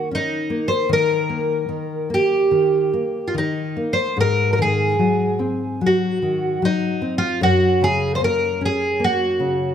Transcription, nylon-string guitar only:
0.00 0.86 D#3 medium
0.11 0.49 C#4 soft
0.50 0.89 A#3 soft
0.89 1.67 D#3 medium
1.29 1.68 A#3 soft
1.69 2.08 D#3 soft
2.10 2.50 A#3 soft
2.51 2.91 D#3 soft
2.93 3.33 A#3 soft
3.34 3.75 D#3 soft
3.76 4.16 A#3 soft
4.17 7.37 G#2 medium
4.58 4.98 D#3 soft
4.99 5.39 F#3 soft
5.39 5.79 C4 soft
5.81 6.21 F#3 soft
6.22 6.61 D#3 soft
6.62 7.01 F#3 soft
7.02 7.40 C4 soft
7.41 9.75 F#2 medium
7.81 8.19 C#3 soft
8.21 8.59 A#3 soft
8.61 8.99 C#4 soft
9.00 9.38 A#3 soft
9.40 9.75 C#3 soft

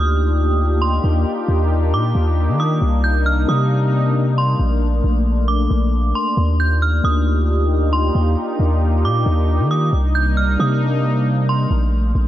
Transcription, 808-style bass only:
0.00 1.00 D2 loud
1.04 1.25 D#2 loud
1.48 1.94 D#2 loud
1.93 2.14 A#2 loud
2.15 2.50 D#2 loud
2.48 2.80 D#3 medium
2.82 3.46 C2 loud
3.48 4.56 C3 loud
4.60 5.02 A#1 loud
5.04 5.68 A#1 loud
5.71 6.13 A#1 loud
6.37 7.01 D#2 loud
7.04 8.11 D2 loud
8.15 8.36 D#2 loud
8.60 9.05 D#2 loud
9.04 9.25 A#2 loud
9.26 9.61 D#2 loud
9.60 9.91 D#3 loud
9.93 10.57 C2 loud
10.60 11.67 C3 loud
11.71 12.13 A#1 loud
12.15 12.28 A#1 loud

